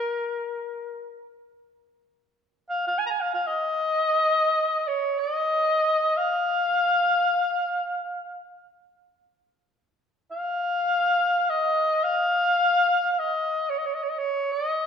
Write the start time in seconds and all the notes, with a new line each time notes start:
Already playing: A#4
2.69 F5
2.87 F5
2.98 G#5
3.06 A#5
3.11 G#5
3.21 F5
3.34 F5
3.47 D#5
4.88 C#5
5.19 D#5
6.17 F5
10.31 F5
11.50 D#5
12.04 F5
13.12 F5
13.19 D#5
13.70 C#5
13.78 D#5
13.86 C#5
13.94 D#5
14.03 C#5
14.09 D#5
14.18 C#5
14.52 D#5